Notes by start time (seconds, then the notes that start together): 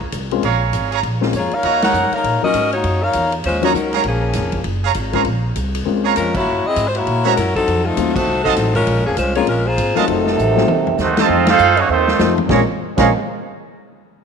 Already playing: C#2
0.01 kick
0.12 C2, kick, hi-hat pedal, ride
0.31 G#3 A#3 C4 C#4 F4, ride
0.42 A#1 G#4 C#5 F5 A#5, kick, ride
0.73 G#1, kick, hi-hat pedal, ride
0.91 G#4 C#5 F5 A#5, ride
1.03 A#1, kick, ride
1.21 G#3 A#3 C4 C#4 F4, snare
1.33 F2 C#5, kick, hi-hat pedal, ride
1.37 A#3 F4 G#4
1.51 D#4 A#4 C#5 F5, muted upright bass stroke, ride
1.63 D#2 F#4 C#5 D#5 A#5, kick, ride
1.82 D#4 A#4 C#5 F#5, snare, ride
1.93 F#2, hi-hat pedal
2.12 D#4 A#4 C#5 F5, muted upright bass stroke, ride
2.24 A#2, kick, ride
2.42 F#3 A#3 C#4 D#4 F4 F#4 A#4 D#5, muted upright bass stroke
2.54 G#2, kick, hi-hat pedal, ride
2.72 A#3 D#4 F#4 C#5, ride
2.84 F#2, kick, ride
3.03 D#4 A#4 C#5 F5
3.13 E2, kick, hi-hat pedal, ride
3.32 ride
3.44 D#2 G#3 C#4 F4 C5, kick, ride
3.61 F#3 A#3 C#4 D#4 F4 F#4 C#5 D#5 A#5, ride
3.65 A#3 D#4 C#5
3.74 C#2 F#3 C#4 D#4 A#4, kick, hi-hat pedal
3.93 G#4 C#5 F5 A#5, snare, ride
4.04 A#1 F3 A#3 C#4 G#4, kick, ride
4.33 F1, kick, snare, hi-hat pedal, ride
4.52 kick, ride
4.64 F#1, kick, ride
4.83 G#4 C#5 F5 A#5
4.94 G#1, kick, hi-hat pedal, ride
5.12 G#3 A#3 C4 C#4 F4 G#4 C#5 F5 A#5, kick, ride
5.25 A#1, kick, ride
5.56 C2, kick, hi-hat pedal, ride
5.75 ride
5.85 C#2 G#3 A#3 C4 C#4 F4, kick
6.05 G#4 C#5 F5 A#5
6.16 F2 G#3 C#4 F4 A#4, kick, hi-hat pedal, ride
6.34 A#3 E4 F#4 C#5, kick, crash
6.46 F#2
6.64 C4 E4 G#4 D#5, muted upright bass stroke
6.76 G#2, kick, hi-hat pedal, ride
6.88 C5
6.95 A#3 E4 F#4 C#5, ride
7.06 A#2, kick, ride
7.24 G#3 A#3 C#4 E4 F#4 C5 C#5 E5 A#5
7.37 F#2 F#3 C#4 E4 A#4, kick, hi-hat pedal, ride
7.55 F#3 C4 D#4 A4, kick, ride
7.67 F2, kick, ride
7.85 A3 C4 D#4 F4
7.97 D#2 F#3 A3 C4 D#4 F4, kick, hi-hat pedal, ride
8.14 A3 D#4 F#4 C5, kick, crash
8.27 C2
8.44 F#3 C4 D#4 F#4 A4 D#5 F5 A5, kick
8.56 A1, kick, snare, hi-hat pedal, ride
8.74 G#3 C#4 F4 A#4, kick, ride
8.87 A#1, kick, ride
8.98 G#1
9.05 F1 F3 A#3 C#4 G#4
9.17 C2 G#3 C#4 F4 C5, kick, hi-hat pedal, ride
9.35 G#3 A#3 C4 C#4 F4 G#4 C#5, ride
9.47 A#1 G#3 C#4 F4 A#4, kick, ride
9.66 A#3 F4 G#4 C5
9.78 G#1, kick, hi-hat pedal, ride
9.95 F#3 G#3 A3 C4 C#4 D#4 F4 F#4 A#4 D#5 F5 A5, muted upright bass stroke, ride
10.05 F1 C3 D#3 F#3 A3 C4 D#4 A4, kick, ride
10.27 snare
10.38 A1, hi-hat pedal
10.56 F#3 A3 C4 D#4 F4, snare
10.68 C2, high tom
10.87 floor tom
10.98 D#2 D#3 A3 C4 D#4 F#4 C5, snare, hi-hat pedal
11.17 F3 A3 C4 D#4 F4 A4 C5 D#5 A5, snare, ride
11.21 C4 D#5
11.29 F2
11.47 A3 C4 D#4 F4 A4 C5 F5, snare, ride
11.58 F#2, hi-hat pedal
11.77 A#3 C#4 D#4 F#4 C#5, ride
11.88 D#2 D#3 A3 C4 D#4 F4 C5
12.08 snare
12.19 F2 F3 A3 C4 D#4 F4, snare, hi-hat pedal
12.38 floor tom
12.49 A#1 A#2 F3 G#3 A#3 C4 C#4 F4 G#4 C#5 F5 A#5, kick, snare
12.97 A#1 A#2 F3 G#3 A#3 C4 C#4 F4 G#4 C#5 F5 A#5, kick, snare, crash